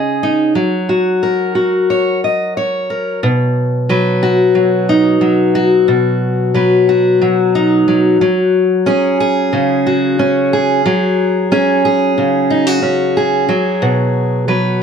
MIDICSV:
0, 0, Header, 1, 2, 480
1, 0, Start_track
1, 0, Tempo, 666667
1, 405, Time_signature, 4, 2, 24, 8
1, 3762, Tempo, 660793
1, 10738, End_track
2, 0, Start_track
2, 0, Title_t, "Steel-string acoustic guitar"
2, 0, Program_c, 0, 25
2, 0, Note_on_c, 0, 49, 61
2, 0, Note_on_c, 0, 61, 50
2, 0, Note_on_c, 0, 63, 47
2, 0, Note_on_c, 0, 68, 48
2, 0, Note_on_c, 0, 75, 51
2, 157, Note_off_c, 0, 63, 0
2, 166, Note_on_c, 0, 63, 53
2, 374, Note_off_c, 0, 68, 0
2, 377, Note_off_c, 0, 63, 0
2, 377, Note_off_c, 0, 75, 0
2, 378, Note_off_c, 0, 61, 0
2, 398, Note_on_c, 0, 54, 65
2, 411, Note_off_c, 0, 49, 0
2, 642, Note_on_c, 0, 66, 52
2, 884, Note_on_c, 0, 70, 49
2, 1108, Note_off_c, 0, 66, 0
2, 1117, Note_on_c, 0, 66, 51
2, 1369, Note_on_c, 0, 73, 54
2, 1609, Note_off_c, 0, 73, 0
2, 1614, Note_on_c, 0, 75, 52
2, 1848, Note_off_c, 0, 75, 0
2, 1850, Note_on_c, 0, 73, 56
2, 2080, Note_off_c, 0, 70, 0
2, 2089, Note_on_c, 0, 70, 45
2, 2295, Note_off_c, 0, 66, 0
2, 2300, Note_off_c, 0, 70, 0
2, 2301, Note_off_c, 0, 73, 0
2, 2326, Note_on_c, 0, 47, 81
2, 2795, Note_off_c, 0, 54, 0
2, 2804, Note_on_c, 0, 54, 65
2, 2808, Note_on_c, 0, 71, 60
2, 3043, Note_on_c, 0, 66, 68
2, 3275, Note_off_c, 0, 54, 0
2, 3275, Note_on_c, 0, 54, 65
2, 3522, Note_on_c, 0, 63, 64
2, 3751, Note_off_c, 0, 54, 0
2, 3751, Note_on_c, 0, 54, 67
2, 3996, Note_off_c, 0, 66, 0
2, 3999, Note_on_c, 0, 66, 67
2, 4214, Note_off_c, 0, 47, 0
2, 4214, Note_off_c, 0, 63, 0
2, 4215, Note_off_c, 0, 71, 0
2, 4237, Note_on_c, 0, 47, 83
2, 4717, Note_off_c, 0, 54, 0
2, 4720, Note_on_c, 0, 54, 64
2, 4727, Note_on_c, 0, 71, 60
2, 4967, Note_off_c, 0, 66, 0
2, 4970, Note_on_c, 0, 66, 60
2, 5208, Note_off_c, 0, 54, 0
2, 5208, Note_on_c, 0, 54, 73
2, 5452, Note_on_c, 0, 63, 65
2, 5689, Note_off_c, 0, 54, 0
2, 5689, Note_on_c, 0, 54, 66
2, 5893, Note_off_c, 0, 47, 0
2, 5897, Note_off_c, 0, 71, 0
2, 5900, Note_off_c, 0, 63, 0
2, 5929, Note_off_c, 0, 54, 0
2, 5932, Note_on_c, 0, 54, 80
2, 6404, Note_on_c, 0, 61, 76
2, 6409, Note_on_c, 0, 68, 72
2, 6430, Note_off_c, 0, 66, 0
2, 6649, Note_off_c, 0, 68, 0
2, 6652, Note_on_c, 0, 68, 74
2, 6887, Note_on_c, 0, 49, 67
2, 7132, Note_on_c, 0, 66, 67
2, 7362, Note_off_c, 0, 61, 0
2, 7370, Note_on_c, 0, 61, 71
2, 7608, Note_off_c, 0, 68, 0
2, 7617, Note_on_c, 0, 68, 73
2, 7818, Note_off_c, 0, 61, 0
2, 7845, Note_off_c, 0, 49, 0
2, 7849, Note_off_c, 0, 54, 0
2, 7852, Note_on_c, 0, 54, 85
2, 8328, Note_off_c, 0, 68, 0
2, 8333, Note_on_c, 0, 61, 73
2, 8337, Note_on_c, 0, 68, 69
2, 8358, Note_off_c, 0, 66, 0
2, 8566, Note_off_c, 0, 68, 0
2, 8575, Note_on_c, 0, 68, 72
2, 8812, Note_on_c, 0, 49, 72
2, 9050, Note_on_c, 0, 63, 67
2, 9167, Note_off_c, 0, 63, 0
2, 9167, Note_on_c, 0, 66, 61
2, 9273, Note_off_c, 0, 61, 0
2, 9282, Note_on_c, 0, 61, 63
2, 9524, Note_off_c, 0, 68, 0
2, 9533, Note_on_c, 0, 68, 66
2, 9733, Note_off_c, 0, 61, 0
2, 9760, Note_off_c, 0, 54, 0
2, 9763, Note_on_c, 0, 54, 76
2, 9765, Note_off_c, 0, 66, 0
2, 9767, Note_off_c, 0, 49, 0
2, 10005, Note_on_c, 0, 47, 81
2, 10481, Note_off_c, 0, 54, 0
2, 10484, Note_off_c, 0, 68, 0
2, 10484, Note_on_c, 0, 54, 60
2, 10487, Note_on_c, 0, 71, 60
2, 10738, Note_off_c, 0, 47, 0
2, 10738, Note_off_c, 0, 54, 0
2, 10738, Note_off_c, 0, 71, 0
2, 10738, End_track
0, 0, End_of_file